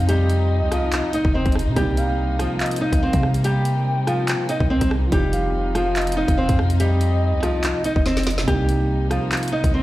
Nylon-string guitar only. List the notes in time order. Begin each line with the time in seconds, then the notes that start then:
0.09 G3 G4
0.72 F3 F4
1.14 D#4 D#5
1.35 C4 C5
1.76 G3 G4
2.39 F3 F4
2.81 D#4 D#5
3.03 C4 C5
3.45 G3 G4
4.07 F3 F4
4.49 D#4 D#5
4.70 C4 C5
5.13 G3 G4
5.75 F3 F4
6.17 D#4 D#5
6.38 C4 C5
6.80 G3 G4
7.43 F3 F4
7.85 D#4 D#5
8.06 C4 C5
8.48 G3 G4
9.11 F3 F4
9.52 D#4 D#5
9.74 C4 C5